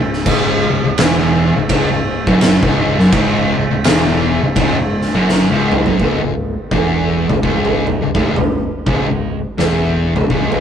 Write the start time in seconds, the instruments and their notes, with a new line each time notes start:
Already playing: distorted electric guitar C#2
0.00 fingered electric bass C#1
0.13 snare
0.26 fingered electric bass C#1, distorted electric guitar C#2, kick, crash
0.70 fingered electric bass C#1, distorted electric guitar C#2
0.84 fingered electric bass C#1, distorted electric guitar C#2
0.98 fingered electric bass E1, distorted electric guitar E2, snare, ride bell
1.56 fingered electric bass C#1, distorted electric guitar C#2
1.69 fingered electric bass C#1, distorted electric guitar C#2, kick, ride bell
1.90 fingered electric bass C#1, distorted electric guitar C#2
2.27 fingered electric bass F#1, distorted electric guitar F#2, kick
2.41 snare, ride bell
2.63 fingered electric bass C#1, distorted electric guitar C#2, kick
2.99 fingered electric bass F#1, distorted electric guitar F#2, snare
3.12 fingered electric bass C#1, distorted electric guitar C#2, kick, ride bell
3.56 fingered electric bass C#1, distorted electric guitar C#2
3.71 fingered electric bass C#1, distorted electric guitar C#2
3.84 fingered electric bass E1, distorted electric guitar E2, snare, ride bell
4.42 fingered electric bass C#1, distorted electric guitar C#2
4.56 fingered electric bass C#1, distorted electric guitar C#2, kick, ride bell
4.78 fingered electric bass C#1, distorted electric guitar C#2
5.01 snare
5.14 fingered electric bass F#1, distorted electric guitar F#2
5.29 snare
5.49 fingered electric bass C#1, distorted electric guitar C#2
5.72 mid tom
5.85 fingered electric bass F#1, distorted electric guitar F#2, floor tom
5.99 fingered electric bass C#1, distorted electric guitar C#2, kick, floor tom
6.21 fingered electric bass C#1, distorted electric guitar C#2
6.71 fingered electric bass E1, distorted electric guitar E2, kick, floor tom
7.29 fingered electric bass C#1, distorted electric guitar C#2, floor tom, mid tom
7.43 fingered electric bass C#1, distorted electric guitar C#2, kick
7.65 floor tom
7.87 fingered electric bass C#1, distorted electric guitar C#2, mid tom
8.02 fingered electric bass C#1, distorted electric guitar C#2
8.15 fingered electric bass D1, distorted electric guitar D2, kick, mid tom
8.36 fingered electric bass C#1, distorted electric guitar C#2, floor tom, mid tom
8.86 fingered electric bass C#1, distorted electric guitar C#2, kick, floor tom
9.08 fingered electric bass C#1, distorted electric guitar C#2
9.58 fingered electric bass E1, distorted electric guitar E2, snare, floor tom
10.16 fingered electric bass C#1, distorted electric guitar C#2, floor tom, mid tom
10.30 fingered electric bass C#1, distorted electric guitar C#2, kick
10.52 floor tom